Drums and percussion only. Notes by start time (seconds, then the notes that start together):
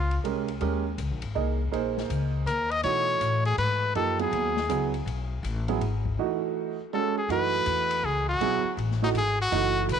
0.11 ride
0.25 ride
0.48 ride
0.61 ride
0.98 hi-hat pedal, ride
1.22 ride
1.73 ride
1.98 snare
2.10 hi-hat pedal, ride
2.47 hi-hat pedal, ride
2.71 ride
2.83 ride
3.21 hi-hat pedal, ride
3.45 ride
3.58 ride
3.95 ride
4.19 ride
4.33 ride
4.57 snare
4.70 hi-hat pedal, ride
4.94 ride
5.07 ride
5.44 hi-hat pedal, ride
5.68 ride
5.81 ride
6.05 kick
7.30 ride
7.66 hi-hat pedal, ride
7.91 ride
8.41 ride
8.78 ride
8.91 snare
9.03 snare
9.15 hi-hat pedal, ride
9.52 ride
9.89 hi-hat pedal, ride